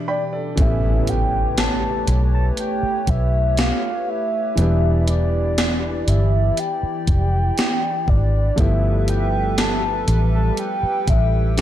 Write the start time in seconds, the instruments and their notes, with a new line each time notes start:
Already playing: analog synth pad B2 E3 D4 G4, grand piano D5 E5 B5
0.08 grand piano D5 G5 B5, soft synth lead D5
0.33 grand piano A4 D5
0.56 fingered electric bass A1, grand piano E3 A3 B3 C#4, analog synth pad A3 G4 B4 C#5, kick, closed hi-hat, impact
0.60 grand piano G4, soft synth lead E5
1.07 soft synth lead G5, closed hi-hat
1.58 soft synth lead A5, snare, closed hi-hat
2.07 fingered electric bass B1, closed hi-hat
2.35 soft synth lead A5
2.57 soft synth lead G5, closed hi-hat
2.83 muted fingered electric bass stroke
3.07 fingered electric bass B1, soft synth lead E5, kick, closed hi-hat
3.57 soft synth lead F5, snare, closed hi-hat
4.10 soft synth lead E5
4.55 fingered electric bass E1, grand piano E3 G3 B3 D4, analog synth pad E3 E4 D5, closed hi-hat
4.60 grand piano G4
5.08 soft synth lead D5, closed hi-hat
5.58 snare, closed hi-hat
6.08 fingered electric bass G1, soft synth lead E5, closed hi-hat
6.57 soft synth lead G5, closed hi-hat
6.83 muted fingered electric bass stroke
7.07 fingered electric bass F1, kick, closed hi-hat
7.58 snare, closed hi-hat
8.08 fingered electric bass G#1, soft synth lead D5, kick
8.56 fingered electric bass G1, grand piano F3 A3 B3 E4, analog synth pad G3 G4 A4 B4 E5, soft synth lead E5, kick, closed hi-hat
8.61 grand piano G4
9.08 soft synth lead G5, closed hi-hat
9.58 soft synth lead A5, snare, closed hi-hat
10.08 fingered electric bass A1, closed hi-hat
10.35 soft synth lead A5
10.57 analog synth pad G5, soft synth lead G5, closed hi-hat
10.83 muted fingered electric bass stroke
11.08 fingered electric bass A1, soft synth lead E5, kick, closed hi-hat
11.57 grand piano F3 A3 B3, closed hi-hat